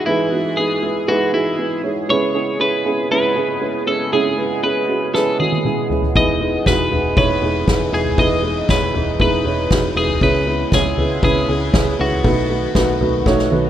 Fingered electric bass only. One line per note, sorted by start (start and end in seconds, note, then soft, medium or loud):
6.16 6.57 E1 loud
6.66 6.87 E1 loud
6.91 7.12 E1 loud
7.17 7.38 E1 loud
7.42 7.63 E1 loud
7.68 7.88 E1 loud
7.92 8.13 E1 medium
8.18 8.60 E1 loud
8.69 8.90 E1 loud
8.94 9.15 E1 loud
9.20 9.41 E1 loud
9.45 9.66 E1 loud
9.71 9.92 E1 loud
9.95 10.16 E1 loud
10.21 10.63 C#2 loud
10.72 10.93 C#2 loud
10.98 11.18 C#2 loud
11.23 11.44 C#2 loud
11.48 11.69 C#2 loud
11.74 11.95 C#2 loud
12.00 12.20 C#2 loud
12.25 12.66 B1 loud
12.75 12.96 B1 loud
13.01 13.22 B1 loud
13.26 13.47 B1 loud
13.51 13.70 B1 loud